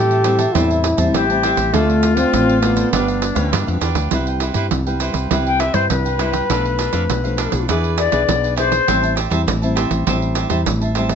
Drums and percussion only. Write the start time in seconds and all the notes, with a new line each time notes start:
0.11 pandeiro
0.24 pandeiro
0.39 pandeiro
0.55 pandeiro
0.71 pandeiro
0.84 pandeiro
0.98 pandeiro
1.14 pandeiro
1.30 pandeiro
1.43 pandeiro
1.57 pandeiro
1.74 pandeiro
1.90 pandeiro
2.03 pandeiro
2.17 pandeiro
2.34 pandeiro
2.49 pandeiro
2.63 pandeiro
2.77 pandeiro
2.93 pandeiro
3.08 pandeiro
3.22 pandeiro
3.36 pandeiro
3.53 pandeiro
3.68 pandeiro
3.81 pandeiro
3.95 pandeiro
4.11 pandeiro
4.27 pandeiro
4.40 pandeiro
4.54 pandeiro
4.71 pandeiro
4.87 pandeiro
5.00 pandeiro
5.14 pandeiro
5.31 pandeiro
5.47 pandeiro
5.60 pandeiro
5.74 pandeiro
5.90 pandeiro
6.06 pandeiro
6.19 pandeiro
6.33 pandeiro
6.50 pandeiro
6.65 pandeiro
6.79 pandeiro
6.93 pandeiro
7.10 pandeiro
7.25 pandeiro
7.38 pandeiro
7.52 pandeiro
7.69 pandeiro
7.84 pandeiro
7.98 pandeiro
8.12 pandeiro
8.29 pandeiro
8.44 pandeiro
8.58 pandeiro
8.72 pandeiro
8.88 pandeiro
9.04 pandeiro
9.17 pandeiro
9.31 pandeiro
9.48 pandeiro
9.63 pandeiro
9.77 pandeiro
9.91 pandeiro
10.07 pandeiro
10.22 pandeiro
10.35 pandeiro
10.50 pandeiro
10.66 pandeiro
10.82 pandeiro
10.95 pandeiro
11.09 pandeiro